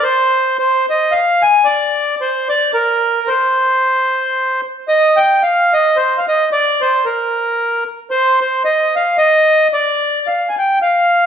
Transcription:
X:1
M:3/4
L:1/16
Q:"Swing" 1/4=112
K:Cm
V:1 name="Accordion"
c4 c2 e2 f2 a2 | d4 c2 d2 B4 | c8- c2 z2 | e2 g2 f2 e2 c3/2 f/2 e2 |
d2 c2 B6 z2 | c2 c2 e2 f2 e4 | d4 f3/2 a/2 g2 f4 |]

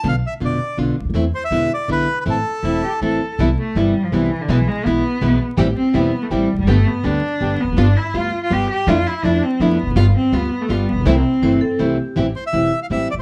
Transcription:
X:1
M:3/4
L:1/16
Q:1/4=163
K:Am
V:1 name="Bandoneon"
f2 e2 d4 z4 | z2 c e3 d2 B3 B | A8 z4 | [K:C] z12 |
z12 | z12 | z12 | z12 |
z12 | z12 | z12 | [K:Am] z2 c e4 f e2 d z |]
V:2 name="Vibraphone"
z12 | z12 | z12 | [K:C] z12 |
z12 | z12 | z12 | z12 |
z12 | z12 | z4 c2 A2 G4 | [K:Am] z12 |]
V:3 name="String section"
z12 | z12 | z12 | [K:C] [B,CE]2 z2 [B,CE]2 z2 [B,CE]2 z2 |
[^G,B,E]2 z2 [G,B,E]2 z2 [G,B,E]2 z2 | [A,CG]2 z2 [A,CG]2 z2 [A,CG]2 z2 | [A,B,G]2 z2 [A,B,G]2 z2 [A,B,G]2 z2 | [G,B,F]2 z2 [G,B,F]2 z2 [G,B,F]2 z2 |
[F,DE]2 z2 [F,DE]2 z2 [F,DE]2 z2 | [G,B,F]2 z2 [G,B,F]2 z2 [G,B,F]2 z2 | [A,CE]2 z2 [A,CE]2 z2 [A,CE]2 z2 | [K:Am] [A,CG]2 z2 [A,CG]2 z2 [A,CG]2 z2 |]
V:4 name="Cello"
z12 | z12 | z4 E2 G2 A4 | [K:C] z2 A,2 G,3 F, E,3 D, |
E,2 ^G,2 B,6 z2 | z2 C2 B,3 A, G,3 G, | A,2 B,2 D6 B,2 | D2 E2 F3 F G2 G2 |
F2 E2 D2 C2 B,3 z | z2 C2 B,3 A, G,2 B,2 | C8 z4 | [K:Am] z12 |]
V:5 name="Nylon-string guitar"
[B,,D,B,DF] z3 [B,,D,B,DF]2 z2 [B,,D,B,DF]2 z2 | [E,A,CE] z3 [B,,D,^G,B,E]2 z2 [B,,D,G,B,E]2 z2 | [E,A,CE] z3 [E,A,CE]2 z2 [E,A,CE]2 z2 | [K:C] [C,E,G,B,E] z3 [C,E,G,B,E]2 z2 [C,E,G,B,E]2 z2 |
[B,,E,^G,B,E] z3 [B,,E,G,B,E]2 z2 [B,,E,G,B,E]2 z2 | [E,G,CE] z3 [E,G,CE]2 z2 [E,G,CE]2 z2 | [D,G,B,G] z3 [D,G,B,G]2 z2 [D,G,B,G]2 z2 | [G,B,F] z3 [G,B,F]2 z2 [G,B,F]2 z2 |
[F,A,DE] z3 [F,A,DE]2 z2 [F,A,DE]2 z2 | [G,B,F] z3 [G,B,F]2 z2 [G,B,F]2 z2 | [C,E,A,CE] z3 [C,E,A,CE]2 z2 [C,E,A,CE]2 z2 | [K:Am] [E,G,CE] z3 [E,G,CE]2 z2 [E,G,CE]2 z2 |]
V:6 name="Upright bass" clef=bass
B,,,3/2 z2 z/2 F,,,3/2 z2 z/2 B,,,3/2 z ^C,,/2 D,,/2 ^D,,/2 | E,,3/2 z2 z/2 E,,3/2 z2 z/2 B,,,3/2 z2 z/2 | A,,,3/2 z2 z/2 E,,,3/2 z2 z/2 A,,,3/2 z2 z/2 | [K:C] C,,3/2 z2 z/2 G,,,3/2 z2 z/2 C,,3/2 z2 z/2 |
B,,,3/2 z2 z/2 B,,,3/2 z2 z/2 B,,,3/2 z2 z/2 | A,,,3/2 z2 z/2 E,,,3/2 z2 z/2 A,,,3/2 z E,,,/2 F,,,/2 ^F,,,/2 | G,,,3/2 z2 z/2 D,,3/2 z2 z/2 G,,,3/2 z E,,,/2 F,,,/2 ^F,,,/2 | G,,,3/2 z2 z/2 D,,3/2 z2 z/2 G,,,3/2 z2 z/2 |
F,,3/2 z2 z/2 F,,3/2 z2 z/2 F,,3/2 z E,,,/2 F,,,/2 ^F,,,/2 | G,,,3/2 z2 z/2 D,,3/2 z2 z/2 G,,,3/2 z A,,,/2 _B,,,/2 =B,,,/2 | C,,3/2 z2 z/2 G,,,3/2 z2 z/2 C,,3/2 z2 z/2 | [K:Am] A,,,3/2 z2 z/2 E,,,3/2 z2 z/2 A,,,3/2 z E,,,/2 F,,,/2 z/2 |]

